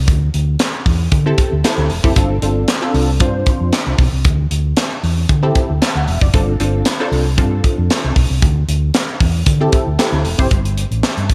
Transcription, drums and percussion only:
0.08 kick, closed hi-hat
0.34 closed hi-hat
0.59 snare, clap, closed hi-hat
0.86 kick, open hi-hat
1.12 kick, closed hi-hat
1.38 kick, closed hi-hat
1.64 snare, clap, closed hi-hat
1.90 open hi-hat
2.04 kick
2.16 kick, closed hi-hat
2.42 closed hi-hat
2.68 snare, clap, closed hi-hat
2.94 open hi-hat
3.20 kick, closed hi-hat
3.46 kick, closed hi-hat
3.73 snare, clap, closed hi-hat
3.98 kick, open hi-hat
4.25 kick, closed hi-hat
4.51 closed hi-hat
4.77 snare, clap, closed hi-hat
5.04 open hi-hat
5.29 kick, closed hi-hat
5.55 kick, closed hi-hat
5.82 snare, clap, closed hi-hat
6.08 open hi-hat
6.21 kick
6.34 kick, closed hi-hat
6.60 closed hi-hat
6.85 snare, clap, closed hi-hat
7.12 open hi-hat
7.38 kick, closed hi-hat
7.64 kick, closed hi-hat
7.90 snare, clap, closed hi-hat
8.16 kick, open hi-hat
8.42 kick, closed hi-hat
8.69 closed hi-hat
8.94 snare, clap, closed hi-hat
9.21 kick, open hi-hat
9.46 kick, closed hi-hat
9.72 kick, closed hi-hat
9.99 snare, clap, closed hi-hat
10.25 open hi-hat
10.39 kick
10.51 kick, closed hi-hat
10.65 closed hi-hat
10.78 closed hi-hat
10.92 closed hi-hat
11.03 snare, clap
11.18 closed hi-hat
11.30 kick, closed hi-hat

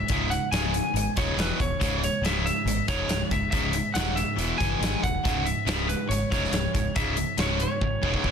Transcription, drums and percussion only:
0.08 kick, closed hi-hat
0.31 closed hi-hat
0.53 snare, closed hi-hat
0.74 closed hi-hat
0.96 closed hi-hat
1.17 kick, snare, closed hi-hat
1.39 snare, closed hi-hat
1.60 kick, closed hi-hat
1.81 kick, closed hi-hat
2.04 closed hi-hat
2.25 snare, closed hi-hat
2.47 closed hi-hat
2.68 closed hi-hat
2.88 kick, snare, closed hi-hat
3.09 snare, closed hi-hat
3.31 kick, closed hi-hat
3.52 kick, closed hi-hat
3.73 closed hi-hat
3.95 snare, closed hi-hat
4.17 closed hi-hat
4.39 closed hi-hat
4.60 kick, snare, closed hi-hat
4.83 snare, closed hi-hat
5.04 kick, closed hi-hat
5.25 kick, closed hi-hat
5.47 closed hi-hat
5.68 snare, closed hi-hat
5.89 closed hi-hat
6.11 closed hi-hat
6.32 kick, closed hi-hat
6.44 snare
6.53 snare, closed hi-hat
6.75 kick, closed hi-hat
6.96 kick, closed hi-hat
7.17 closed hi-hat
7.38 snare, closed hi-hat
7.60 closed hi-hat
7.81 kick
8.03 kick
8.14 kick
8.24 kick

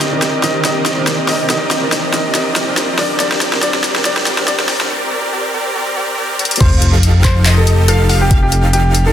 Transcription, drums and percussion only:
0.01 snare, closed hi-hat
0.22 snare, closed hi-hat
0.44 snare, closed hi-hat
0.65 snare, closed hi-hat
0.86 snare, closed hi-hat
1.07 snare, closed hi-hat
1.29 snare, open hi-hat
1.50 snare, closed hi-hat
1.71 snare, closed hi-hat
1.92 snare, closed hi-hat
2.14 snare, closed hi-hat
2.35 snare, closed hi-hat
2.56 snare, closed hi-hat
2.77 snare, closed hi-hat
2.99 snare, open hi-hat
3.20 snare, closed hi-hat
3.32 snare
3.41 snare, closed hi-hat
3.53 snare
3.63 snare, closed hi-hat
3.74 snare
3.84 snare, closed hi-hat
3.96 snare
4.05 snare, closed hi-hat
4.17 snare
4.27 snare, closed hi-hat
4.38 snare
4.48 snare, closed hi-hat
4.60 snare
4.69 snare, open hi-hat
4.81 snare
6.39 closed hi-hat
6.45 closed hi-hat
6.51 closed hi-hat
6.56 closed hi-hat
6.60 kick, closed hi-hat, crash
6.82 closed hi-hat
7.03 closed hi-hat
7.24 kick, clap, closed hi-hat
7.46 clap, closed hi-hat
7.67 closed hi-hat
7.88 closed hi-hat
8.09 open hi-hat
8.31 kick, closed hi-hat
8.52 closed hi-hat
8.73 closed hi-hat
8.95 closed hi-hat

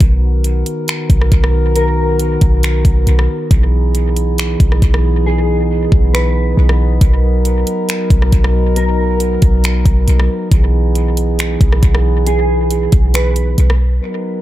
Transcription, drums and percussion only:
0.00 kick, closed hi-hat
0.44 closed hi-hat
0.66 closed hi-hat
0.88 finger snap, closed hi-hat
1.10 kick, closed hi-hat
1.22 cross-stick
1.32 kick, closed hi-hat
1.44 cross-stick
1.76 closed hi-hat
2.19 closed hi-hat
2.41 kick, closed hi-hat
2.63 finger snap, closed hi-hat
2.85 kick, closed hi-hat
3.07 closed hi-hat
3.19 cross-stick
3.51 kick, closed hi-hat
3.95 closed hi-hat
4.17 closed hi-hat
4.38 finger snap, closed hi-hat
4.60 kick, closed hi-hat
4.72 cross-stick
4.82 kick, closed hi-hat
4.94 cross-stick
5.92 kick
6.15 finger snap
6.69 cross-stick
7.01 kick, closed hi-hat
7.45 closed hi-hat
7.67 closed hi-hat
7.89 finger snap, closed hi-hat
8.10 kick, closed hi-hat
8.22 cross-stick
8.32 kick, closed hi-hat
8.44 cross-stick
8.76 closed hi-hat
9.20 closed hi-hat
9.42 kick, closed hi-hat
9.64 finger snap, closed hi-hat
9.86 kick, closed hi-hat
10.08 closed hi-hat
10.20 cross-stick
10.52 kick, closed hi-hat
10.95 closed hi-hat
11.17 closed hi-hat
11.39 finger snap, closed hi-hat
11.61 kick, closed hi-hat
11.72 cross-stick
11.83 kick, closed hi-hat
11.95 cross-stick
12.27 closed hi-hat
12.71 closed hi-hat
12.92 kick, closed hi-hat
13.14 finger snap, closed hi-hat
13.36 closed hi-hat
13.58 closed hi-hat
13.70 cross-stick

